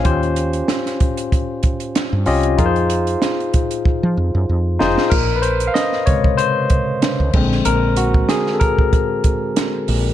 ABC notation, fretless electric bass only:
X:1
M:4/4
L:1/16
Q:"Swing 16ths" 1/4=95
K:Bbm
V:1 name="Fretless electric bass" clef=bass
E,,4 z8 z =G,, C,,2 | F,,4 z4 z F, F,, G,, F,,2 F,,, z | B,,,4 z8 z D,, B,,,2 | B,,,4 z8 z2 B,,,2 |]